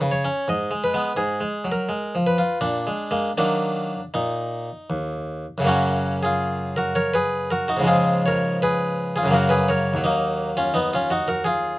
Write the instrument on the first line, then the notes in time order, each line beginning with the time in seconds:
harpsichord
Already playing: B4
0.01 C#3
0.11 C#5
0.25 C#4
0.48 G#2 D#5
0.71 G#3
0.84 B4
0.94 G#3 B3
1.17 G#2 G#4
1.41 G#3
1.64 F#3
1.72 A#4
1.89 G#3
2.15 F3
2.27 B4
2.38 F4
2.61 A#2 D4
2.87 G#3
3.11 G#3 A#3
3.38 D#3 F#3 A#3 D4
4.14 A#2 D#4
4.90 D#2
5.58 F#2 C#3 F#3
5.65 A#3 C#4 F#4
6.23 F4 G#4
6.76 F#4 A#4
6.95 A#4 C#5
7.14 G#4 B4
7.51 F#4 A#4
7.68 D#4 F#4
7.77 G#2 C#3
7.81 F3 G#3
7.87 F4 G#4
8.26 A#4 C#5
8.62 G#4 B4
9.16 F4 G#4
9.23 F#2 C#3
9.28 F#3 A#3
9.34 F#4 A#4
9.49 G#4 B4
9.69 A#4 C#5
9.94 D#2 F#3
10.04 A#3 D#4
10.57 C#4 F4
10.74 B3 D#4
10.93 C#4 F4
11.10 D#4 F#4
11.28 F#4 A#4
11.44 F4 G#4